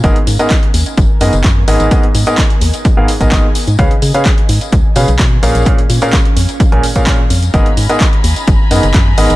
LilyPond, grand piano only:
\new Staff \with { instrumentName = "Grand piano" } { \time 4/4 \key gis \dorian \tempo 4 = 128 <gis, b gis' ais' dis''>16 r8 <gis, b gis' ais' dis''>16 r4. <gis, b gis' ais' dis''>16 r8. <gis, b gis' ais' dis''>8 | <gis, b gis' ais' dis''>16 r8 <gis, b gis' ais' dis''>16 r4 r16 <gis, b gis' ais' eis''>16 r16 <gis, b gis' ais' dis''>16 <gis, b gis' ais' dis''>16 r8. | <cis cis' gis' b' eis''>16 r8 <cis cis' gis' b' eis''>16 r4. <cis cis' gis' b' eis''>16 r8. <ais, cis' gis' ais' eis''>8 | <ais, cis' gis' ais' eis''>16 r8 <ais, cis' gis' ais' eis''>16 r4 r16 <ais, cis' gis' ais' gis''>16 r16 <ais, cis' gis' ais' eis''>16 <ais, cis' gis' ais' eis''>16 r8. |
<gis, b gis' ais' dis''>16 r8 <gis, b gis' ais' dis''>16 r4. <gis, b gis' ais' dis''>16 r8. <gis, b gis' ais' dis''>8 | }